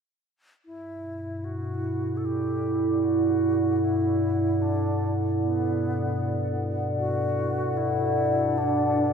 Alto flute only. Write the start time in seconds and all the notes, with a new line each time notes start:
0.66 E4
1.44 F#4
2.17 A4
2.25 G4
3.03 F#4
3.82 E4
4.62 D4
5.41 B3
6.99 F#4
7.77 E4
8.58 D4